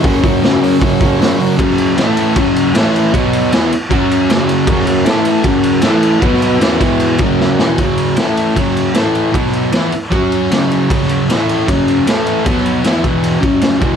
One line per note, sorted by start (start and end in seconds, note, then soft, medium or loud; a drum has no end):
0.01 0.21 F#2 loud
0.01 0.22 C#3 loud
0.01 0.23 F#3 loud
0.01 0.20 C#4 loud
0.01 0.21 F#4 loud
0.01 0.21 A#4 loud
0.01 kick loud
0.01 open hi-hat medium
0.22 0.41 F#2 medium
0.22 0.41 C#3 medium
0.22 0.42 F#3 loud
0.22 0.40 C#4 medium
0.22 0.40 F#4 medium
0.22 0.40 A#4 loud
0.22 kick medium
0.22 open hi-hat medium
0.42 0.59 F#2 medium
0.42 0.61 C#3 medium
0.42 0.61 F#3 loud
0.42 0.78 C#4 medium
0.42 0.78 F#4 medium
0.42 0.79 A#4 loud
0.42 snare loud
0.42 open hi-hat medium
0.60 0.79 F#2 medium
0.60 0.80 C#3 loud
0.60 0.81 F#3 loud
0.60 open hi-hat medium
0.80 1.00 F#2 loud
0.80 1.01 C#3 loud
0.80 1.01 F#3 loud
0.80 1.16 C#4 medium
0.80 1.16 F#4 medium
0.80 1.17 A#4 medium
0.80 kick medium
0.80 open hi-hat medium
1.01 1.18 F#2 medium
1.01 1.19 C#3 loud
1.01 1.20 F#3 loud
1.01 kick loud
1.01 open hi-hat medium
1.20 1.38 F#2 loud
1.20 1.40 C#3 loud
1.20 1.39 F#3 loud
1.20 1.56 C#4 medium
1.20 1.56 F#4 medium
1.20 snare loud
1.20 open hi-hat medium
1.24 1.57 A#4 loud
1.39 1.57 F#2 medium
1.39 1.58 C#3 medium
1.39 1.58 F#3 medium
1.39 open hi-hat medium
1.59 1.97 F#2 medium
1.59 1.95 C#3 loud
1.59 1.97 F#3 loud
1.59 kick loud
1.59 ride loud
1.70 snare soft
1.78 ride medium
1.95 2.34 A2 loud
1.95 2.35 E3 medium
1.95 2.35 A3 loud
1.95 snare loud
1.95 ride loud
2.17 ride medium
2.36 2.74 F#2 medium
2.36 2.74 C#3 loud
2.36 2.74 F#3 loud
2.36 kick loud
2.36 ride loud
2.56 ride medium
2.74 3.12 A2 loud
2.74 3.13 E3 loud
2.74 3.13 A3 loud
2.74 snare loud
2.74 ride loud
2.87 snare soft
2.96 ride medium
3.12 3.51 B2 loud
3.12 3.52 F#3 loud
3.12 3.52 B3 loud
3.12 kick loud
3.12 ride loud
3.33 ride medium
3.52 3.71 E3 medium
3.52 3.71 B3 loud
3.52 3.72 E4 medium
3.52 snare loud
3.52 ride loud
3.72 muted distorted electric guitar stroke medium
3.72 ride medium
3.90 4.28 F#3 medium
3.90 4.29 C#4 loud
3.90 4.29 F#4 loud
3.90 kick loud
3.90 ride medium
4.11 ride medium
4.30 4.67 F#2 medium
4.30 4.68 C#3 loud
4.30 4.69 F#3 loud
4.30 snare loud
4.30 ride loud
4.49 ride medium
4.67 5.06 F#2 medium
4.67 5.05 C#3 loud
4.67 5.05 F#3 loud
4.67 4.85 C#4 loud
4.67 4.86 F#4 loud
4.67 4.86 A#4 loud
4.67 kick loud
4.67 ride loud
4.79 snare soft
4.87 5.05 C#4 medium
4.87 5.05 F#4 medium
4.87 5.05 A#4 medium
4.87 ride medium
5.05 5.43 A2 loud
5.05 5.44 E3 loud
5.05 5.42 A3 medium
5.05 5.45 A3 loud
5.05 5.41 E4 medium
5.05 5.42 A4 loud
5.05 snare loud
5.05 ride loud
5.25 ride medium
5.43 5.82 F#2 loud
5.43 5.82 C#3 loud
5.43 5.83 F#3 loud
5.43 kick loud
5.43 ride loud
5.47 5.81 C#4 medium
5.47 5.81 F#4 medium
5.47 5.81 A#4 loud
5.63 ride medium
5.82 6.20 A2 medium
5.82 6.21 E3 loud
5.82 6.22 A3 loud
5.82 snare loud
5.82 ride loud
5.86 6.20 A3 medium
5.86 6.20 E4 medium
5.86 6.20 A4 loud
5.93 snare soft
6.03 ride medium
6.20 6.60 B2 medium
6.20 6.60 F#3 loud
6.20 6.60 B3 medium
6.20 kick loud
6.20 ride loud
6.25 6.41 B3 loud
6.25 6.41 F#4 medium
6.25 6.41 B4 loud
6.34 snare soft
6.42 ride medium
6.46 6.62 B3 medium
6.46 6.58 F#4 medium
6.46 6.62 B4 medium
6.59 6.79 E3 loud
6.59 6.80 B3 loud
6.59 6.81 C#4 medium
6.59 6.80 E4 loud
6.59 6.80 F#4 medium
6.59 6.81 A#4 medium
6.59 snare loud
6.59 ride loud
6.79 7.18 E2 medium
6.79 7.18 B2 loud
6.79 7.19 E3 medium
6.79 7.16 B3 medium
6.79 7.16 E4 medium
6.79 7.16 B4 medium
6.79 kick loud
6.79 ride medium
7.00 ride medium
7.18 7.58 F#2 loud
7.18 7.58 C#3 medium
7.18 7.59 F#3 loud
7.18 7.73 C#4 medium
7.18 7.73 F#4 medium
7.18 kick loud
7.18 ride medium
7.23 7.74 A#4 medium
7.40 snare medium
7.59 7.77 E2 medium
7.59 7.78 B2 medium
7.59 7.78 E3 loud
7.59 snare loud
7.78 8.17 F#2 medium
7.78 8.17 C#3 medium
7.78 8.18 F#3 medium
7.78 kick loud
7.78 ride loud
7.98 ride medium
8.16 8.55 A2 medium
8.16 8.56 E3 medium
8.16 8.56 A3 medium
8.16 snare loud
8.16 ride medium
8.37 ride medium
8.55 8.94 F#2 medium
8.55 8.94 C#3 loud
8.55 8.94 F#3 loud
8.55 kick medium
8.55 ride medium
8.77 ride medium
8.94 9.32 A2 medium
8.94 9.33 E3 medium
8.94 9.33 A3 loud
8.94 snare loud
8.94 ride medium
9.15 ride medium
9.32 9.71 B2 medium
9.32 9.72 F#3 medium
9.32 9.72 B3 loud
9.32 kick loud
9.32 ride loud
9.46 snare soft
9.53 ride medium
9.72 9.91 E3 medium
9.72 9.92 B3 medium
9.72 9.93 E4 loud
9.72 snare loud
9.72 ride medium
9.92 muted distorted electric guitar stroke medium
9.92 ride medium
10.11 10.50 F#3 loud
10.11 10.50 C#4 loud
10.11 10.50 F#4 loud
10.11 kick loud
10.11 ride medium
10.32 ride medium
10.51 10.88 F#2 medium
10.51 10.89 C#3 medium
10.51 10.90 F#3 loud
10.51 snare loud
10.51 ride medium
10.63 snare soft
10.71 ride medium
10.89 11.28 F#2 medium
10.89 11.29 C#3 loud
10.89 11.31 F#3 loud
10.89 kick loud
10.89 ride loud
11.02 snare soft
11.09 ride medium
11.29 11.67 A2 medium
11.29 11.68 E3 loud
11.29 11.68 A3 loud
11.29 snare loud
11.29 ride medium
11.49 ride medium
11.67 12.06 F#2 medium
11.67 12.06 C#3 loud
11.67 12.06 F#3 loud
11.67 kick loud
11.67 ride medium
11.88 ride medium
12.06 12.45 A2 medium
12.06 12.45 E3 medium
12.06 12.45 A3 loud
12.06 snare loud
12.06 ride loud
12.27 ride medium
12.45 12.84 B2 medium
12.45 12.84 F#3 medium
12.45 12.84 B3 loud
12.45 kick loud
12.45 ride medium
12.58 snare soft
12.66 ride medium
12.84 13.02 E3 medium
12.84 13.03 B3 loud
12.84 13.04 E4 loud
12.84 snare loud
12.84 ride medium
13.03 13.40 E2 loud
13.03 13.40 B2 medium
13.03 13.42 E3 loud
13.03 kick loud
13.03 ride medium
13.24 ride medium
13.40 13.80 F#2 medium
13.40 13.80 C#3 loud
13.40 13.81 F#3 loud
13.40 kick loud
13.40 ride medium
13.61 snare loud
13.61 ride loud
13.74 snare soft
13.80 13.96 E2 medium
13.80 13.96 B2 medium
13.80 13.96 E3 medium
13.80 kick loud
13.80 ride medium